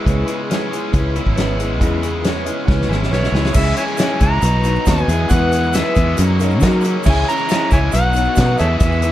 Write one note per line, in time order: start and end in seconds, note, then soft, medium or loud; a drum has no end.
0.00 0.26 G#3 medium
0.00 1.15 E4 medium
0.05 0.23 C#2 loud
0.05 1.39 C#3 medium
0.05 0.29 C#3 medium
0.05 0.28 G#3 medium
0.05 0.29 B3 medium
0.05 0.40 E4 medium
0.05 0.29 E4 medium
0.05 0.27 G#4 loud
0.05 0.40 B4 medium
0.05 0.41 C#5 medium
0.05 kick medium
0.05 closed hi-hat medium
0.27 0.71 G#3 medium
0.27 0.50 B3 soft
0.27 0.51 E4 soft
0.27 0.50 G#4 medium
0.27 closed hi-hat medium
0.49 0.72 G#3 medium
0.49 0.72 B3 medium
0.49 0.94 C#4 medium
0.49 0.84 E4 medium
0.49 0.73 E4 medium
0.49 0.72 G#4 medium
0.49 0.84 B4 medium
0.49 0.84 C#5 medium
0.49 snare loud
0.49 closed hi-hat medium
0.71 1.58 G#3 medium
0.71 0.92 B3 soft
0.71 0.93 E4 soft
0.71 0.93 G#4 medium
0.71 closed hi-hat medium
0.91 1.19 C#2 medium
0.91 1.15 C#3 medium
0.91 1.15 G#3 medium
0.91 1.15 B3 medium
0.91 2.03 C#4 medium
0.91 1.27 E4 medium
0.91 1.15 E4 medium
0.91 1.15 G#4 medium
0.91 1.27 B4 medium
0.91 1.27 C#5 medium
0.91 kick loud
0.91 closed hi-hat medium
1.16 1.38 B3 medium
1.16 2.25 E4 medium
1.16 1.38 E4 medium
1.16 1.37 G#4 medium
1.16 closed hi-hat medium
1.26 1.81 G#1 medium
1.26 kick medium
1.34 2.46 B3 medium
1.34 1.70 E4 medium
1.34 1.71 B4 medium
1.34 1.71 C#5 loud
1.34 closed hi-hat medium
1.38 1.60 G#3 medium
1.38 1.60 B3 medium
1.38 1.60 E4 medium
1.38 1.59 G#4 medium
1.38 snare loud
1.58 2.01 G#3 medium
1.58 1.82 E4 soft
1.58 1.81 G#4 medium
1.58 closed hi-hat medium
1.63 1.82 B3 soft
1.79 2.49 E2 medium
1.79 2.90 C#3 medium
1.79 2.03 C#3 medium
1.79 2.04 G#3 medium
1.79 2.14 E4 medium
1.79 2.15 B4 medium
1.79 2.15 D#5 medium
1.79 kick loud
1.79 closed hi-hat medium
1.83 2.04 B3 medium
1.83 2.04 E4 medium
1.83 2.03 G#4 medium
2.02 2.44 G#3 medium
2.02 2.25 B3 soft
2.02 2.26 E4 medium
2.02 2.25 G#4 medium
2.02 closed hi-hat medium
2.22 2.66 C#4 medium
2.22 2.58 E4 medium
2.22 2.58 B4 medium
2.22 2.59 C#5 medium
2.22 snare loud
2.22 closed hi-hat medium
2.26 2.47 G#3 medium
2.26 2.47 B3 medium
2.26 2.47 E4 medium
2.26 2.45 G#4 medium
2.44 3.32 G#3 medium
2.44 2.68 E4 soft
2.44 2.68 G#4 medium
2.44 2.66 E5 medium
2.44 closed hi-hat medium
2.48 2.68 B3 soft
2.64 3.55 C#4 medium
2.64 3.01 E4 medium
2.64 3.01 B4 medium
2.64 3.02 C#5 medium
2.64 2.87 F#5 medium
2.68 2.85 C#2 medium
2.68 2.90 C#3 medium
2.68 2.90 G#3 medium
2.68 2.90 B3 medium
2.68 2.90 E4 medium
2.68 2.88 G#4 medium
2.68 kick loud
2.68 snare medium
2.81 snare medium
2.89 3.09 G#1 medium
2.89 3.11 B3 soft
2.89 3.56 E4 medium
2.89 3.12 E4 medium
2.89 3.12 G#4 medium
2.89 3.10 G#5 medium
2.89 snare medium
3.03 snare medium
3.10 3.31 B1 medium
3.10 3.34 G#3 medium
3.10 3.56 B3 medium
3.10 3.34 B3 medium
3.10 3.45 E4 medium
3.10 3.34 E4 medium
3.10 3.33 G#4 medium
3.10 3.46 B4 medium
3.10 3.46 C#5 medium
3.10 3.52 C#5 medium
3.10 3.31 B5 medium
3.10 snare medium
3.24 snare medium
3.32 3.53 C#2 medium
3.32 3.55 G#3 medium
3.32 3.56 E4 medium
3.32 3.56 G#4 medium
3.32 3.53 C#6 medium
3.32 snare medium
3.36 3.56 B3 soft
3.46 snare medium
3.52 3.72 C#2 loud
3.52 3.99 C#3 medium
3.52 3.98 E3 medium
3.52 3.88 E4 loud
3.52 3.89 G#4 medium
3.52 3.89 C#5 loud
3.52 3.76 E5 loud
3.52 kick loud
3.52 crash loud
3.52 shaker loud
3.57 3.78 C#3 medium
3.57 3.78 G#3 loud
3.57 3.78 G#3 medium
3.57 3.77 C#4 loud
3.57 3.78 C#4 medium
3.57 3.78 E4 medium
3.57 3.75 E4 medium
3.57 3.76 G#4 loud
3.77 3.99 G#3 medium
3.77 4.00 C#4 medium
3.77 3.97 C#4 soft
3.77 4.02 E4 medium
3.77 3.98 E4 soft
3.77 3.98 G#4 medium
3.77 3.84 C#5 medium
3.77 3.83 E5 medium
3.77 4.18 G#5 loud
3.77 closed hi-hat medium
3.77 shaker medium
3.88 shaker soft
3.96 4.21 C#3 medium
3.96 4.42 E3 medium
3.96 4.20 G#3 medium
3.96 4.21 C#4 medium
3.96 4.32 E4 medium
3.96 4.20 E4 medium
3.96 4.33 G#4 medium
3.96 4.19 G#4 medium
3.96 4.33 C#5 medium
3.96 snare loud
3.96 closed hi-hat loud
3.96 shaker loud
4.00 4.23 G#3 medium
4.00 4.22 C#4 medium
4.00 4.20 E4 medium
4.20 4.38 C#2 medium
4.20 4.42 C#4 soft
4.20 4.43 C#4 medium
4.20 4.42 E4 medium
4.20 4.43 E4 soft
4.20 4.43 G#4 medium
4.20 4.83 A#5 loud
4.20 kick medium
4.20 closed hi-hat medium
4.20 shaker medium
4.24 4.43 G#3 medium
4.41 4.77 B1 loud
4.41 4.86 B2 medium
4.41 4.64 F#3 medium
4.41 4.87 F#3 medium
4.41 4.65 B3 medium
4.41 4.88 B3 medium
4.41 4.65 D#4 medium
4.41 4.88 D#4 loud
4.41 4.60 F#4 medium
4.41 4.89 F#4 loud
4.41 4.60 B4 medium
4.41 4.64 B4 medium
4.41 4.60 D#5 medium
4.41 closed hi-hat loud
4.41 shaker loud
4.63 4.87 D#4 medium
4.63 4.81 F#4 medium
4.63 4.82 B4 medium
4.63 4.87 B4 medium
4.63 4.82 D#5 medium
4.63 closed hi-hat medium
4.63 shaker medium
4.67 4.87 F#3 medium
4.67 4.87 B3 soft
4.75 shaker soft
4.84 5.04 D#2 medium
4.84 5.09 B2 medium
4.84 5.08 B2 medium
4.84 5.09 D#3 medium
4.84 5.08 F#3 medium
4.84 5.09 F#3 medium
4.84 5.09 B3 medium
4.84 5.07 F#4 medium
4.84 5.06 B4 medium
4.84 5.08 C#5 medium
4.84 5.33 G#5 medium
4.84 kick medium
4.84 snare loud
4.84 closed hi-hat loud
4.84 shaker loud
4.89 5.08 B3 medium
4.89 5.10 D#4 medium
4.89 5.09 D#4 loud
4.89 5.08 F#4 medium
4.89 5.09 B4 medium
4.98 shaker soft
5.07 5.25 E2 medium
5.07 5.31 G#3 medium
5.07 5.31 B3 medium
5.07 5.60 G#4 medium
5.07 5.33 G#4 medium
5.07 5.60 B4 medium
5.07 5.31 B4 medium
5.07 5.61 E5 medium
5.07 closed hi-hat medium
5.07 shaker medium
5.11 5.28 E2 medium
5.11 5.29 B2 medium
5.11 5.30 E3 medium
5.11 5.30 B3 soft
5.11 5.31 E4 soft
5.29 5.74 E2 medium
5.29 5.82 E2 medium
5.29 5.74 B2 medium
5.29 5.52 E3 medium
5.29 5.54 E3 loud
5.29 5.53 G#3 medium
5.29 5.53 B3 medium
5.29 5.52 B3 medium
5.29 5.53 E4 medium
5.29 5.52 B4 loud
5.29 5.77 F#5 loud
5.29 kick loud
5.29 closed hi-hat medium
5.29 shaker loud
5.34 5.51 G#4 loud
5.52 5.73 E3 medium
5.52 5.74 G#3 medium
5.52 5.76 B3 medium
5.52 5.73 B3 soft
5.52 5.74 E4 soft
5.52 5.76 G#4 medium
5.52 5.74 B4 soft
5.52 closed hi-hat medium
5.52 shaker medium
5.63 shaker soft
5.72 5.96 E3 medium
5.72 5.97 E3 medium
5.72 5.96 G#3 medium
5.72 5.96 B3 medium
5.72 5.96 E4 loud
5.72 6.07 G#4 medium
5.72 6.08 B4 medium
5.72 6.08 E5 medium
5.72 snare loud
5.72 closed hi-hat loud
5.72 shaker loud
5.76 5.96 B3 medium
5.76 5.94 G#4 medium
5.76 5.95 B4 medium
5.76 6.19 E5 loud
5.95 6.14 E2 loud
5.95 6.18 E3 medium
5.95 6.17 G#3 medium
5.95 6.17 B3 medium
5.95 6.19 B3 soft
5.95 6.18 E4 medium
5.95 6.16 G#4 medium
5.95 6.18 B4 medium
5.95 kick medium
5.95 closed hi-hat medium
5.95 shaker medium
6.16 6.60 F#2 loud
6.16 6.62 F#2 medium
6.16 6.62 C#3 medium
6.16 6.40 F#3 medium
6.16 6.63 F#3 loud
6.16 6.63 A#3 medium
6.16 6.41 C#4 medium
6.16 6.34 F#4 medium
6.16 6.35 A#4 medium
6.16 6.35 D#5 medium
6.16 closed hi-hat loud
6.16 shaker loud
6.20 6.64 C#4 loud
6.20 6.41 D#4 medium
6.20 6.65 F#4 loud
6.20 6.40 A#4 medium
6.40 6.62 C#4 medium
6.40 6.62 D#4 medium
6.40 6.57 F#4 medium
6.40 6.57 A#4 medium
6.40 6.62 A#4 medium
6.40 6.58 D#5 loud
6.40 closed hi-hat medium
6.40 shaker medium
6.50 shaker soft
6.60 7.04 F#2 medium
6.60 7.05 C#3 medium
6.60 6.96 F#3 medium
6.60 6.84 F#3 medium
6.60 6.86 F#3 loud
6.60 6.85 A#3 medium
6.60 6.84 C#4 medium
6.60 6.84 D#4 loud
6.60 6.95 F#4 medium
6.60 6.96 A#4 medium
6.60 6.97 D#5 loud
6.60 kick medium
6.60 snare loud
6.60 closed hi-hat loud
6.60 shaker loud
6.64 6.84 C#4 loud
6.64 6.83 F#4 loud
6.64 6.83 A#4 loud
6.71 shaker soft
6.81 7.05 C#4 medium
6.81 7.04 F#4 medium
6.81 7.06 A#4 medium
6.81 closed hi-hat medium
6.81 shaker medium
6.86 7.06 F#3 medium
6.86 7.05 A#3 medium
6.86 7.05 C#4 medium
6.86 7.06 D#4 medium
7.03 7.23 C#2 loud
7.03 7.27 C#3 medium
7.03 7.49 C#3 medium
7.03 7.48 E3 medium
7.03 7.28 G#3 medium
7.03 7.28 C#4 medium
7.03 7.28 E4 medium
7.03 7.39 G#4 loud
7.03 7.27 G#4 loud
7.03 7.39 C#5 medium
7.03 7.40 E5 loud
7.03 kick loud
7.03 crash loud
7.03 shaker loud
7.08 7.31 G#3 loud
7.08 7.29 C#4 loud
7.08 7.28 E4 medium
7.08 7.28 G#5 loud
7.28 7.49 C#4 medium
7.28 7.50 C#4 medium
7.28 7.51 E4 medium
7.28 7.49 E4 soft
7.28 7.49 G#4 medium
7.28 7.68 A#5 loud
7.28 closed hi-hat medium
7.32 7.49 G#3 medium
7.37 shaker soft
7.47 7.71 C#3 medium
7.47 7.91 E3 medium
7.47 7.71 G#3 medium
7.47 7.71 C#4 loud
7.47 7.71 E4 loud
7.47 7.82 G#4 medium
7.47 7.70 G#4 loud
7.47 7.83 C#5 medium
7.47 7.83 E5 medium
7.47 shaker loud
7.51 7.73 G#3 medium
7.51 7.71 C#4 medium
7.51 7.69 E4 medium
7.51 snare loud
7.51 closed hi-hat loud
7.71 7.89 C#2 loud
7.71 7.93 G#3 medium
7.71 7.92 C#4 medium
7.71 7.93 C#4 soft
7.71 7.91 E4 medium
7.71 7.93 E4 medium
7.71 7.93 G#4 soft
7.71 7.80 C#5 medium
7.71 7.80 E5 medium
7.71 7.92 G#5 loud
7.71 kick medium
7.71 closed hi-hat medium
7.71 shaker medium
7.92 8.27 B1 loud
7.92 8.35 B2 loud
7.92 8.14 F#3 medium
7.92 8.37 F#3 loud
7.92 8.15 B3 medium
7.92 8.38 B3 loud
7.92 8.14 D#4 medium
7.92 8.09 F#4 medium
7.92 8.10 B4 medium
7.92 8.13 B4 medium
7.92 8.10 D#5 medium
7.92 8.54 F#5 loud
7.92 closed hi-hat medium
7.92 shaker loud
7.96 8.39 D#4 loud
7.96 8.40 F#4 loud
8.13 8.36 F#3 medium
8.13 8.36 B3 medium
8.13 8.36 D#4 medium
8.13 8.31 F#4 medium
8.13 8.36 B4 medium
8.13 8.32 C#5 medium
8.13 closed hi-hat medium
8.13 shaker medium
8.24 shaker soft
8.35 8.57 B2 medium
8.35 8.58 B2 medium
8.35 8.54 B2 medium
8.35 8.58 D#3 medium
8.35 8.59 F#3 medium
8.35 8.58 F#3 loud
8.35 8.59 B3 medium
8.35 8.59 D#4 medium
8.35 8.57 F#4 medium
8.35 8.55 B4 medium
8.35 8.58 B4 medium
8.35 8.58 D#5 medium
8.35 kick medium
8.35 snare loud
8.35 closed hi-hat medium
8.35 shaker loud
8.39 8.58 B3 loud
8.39 8.58 D#4 loud
8.39 8.59 F#4 loud
8.56 9.09 G#4 medium
8.56 8.83 G#4 medium
8.56 8.68 A4 medium
8.56 9.10 B4 medium
8.56 8.80 B4 medium
8.56 8.66 C#5 medium
8.56 9.10 E5 medium
8.56 8.78 E5 loud
8.56 closed hi-hat medium
8.56 shaker medium
8.60 8.77 E2 medium
8.60 8.79 E2 medium
8.60 8.80 B2 medium
8.60 8.81 E3 medium
8.60 8.82 G#3 medium
8.60 8.83 B3 medium
8.60 8.81 B3 soft
8.60 8.81 E4 soft
8.78 9.12 E2 loud
8.78 9.12 E2 medium
8.78 9.12 B2 medium
8.78 9.03 E3 medium
8.78 9.03 G#3 medium
8.78 9.12 E5 loud
8.78 kick loud
8.78 closed hi-hat medium
8.78 shaker loud
8.82 9.05 E3 loud
8.82 9.03 G#3 medium
8.82 9.03 B3 medium
8.82 9.03 B3 loud
8.82 9.03 E4 medium
8.82 9.01 G#4 medium
8.82 9.02 B4 loud
8.92 shaker soft
9.02 9.12 E3 medium
9.02 9.12 G#3 medium
9.02 9.12 B3 medium
9.02 9.12 B3 soft
9.02 9.12 E4 medium
9.02 9.12 G#4 medium
9.02 9.12 B4 medium
9.02 closed hi-hat medium
9.02 shaker medium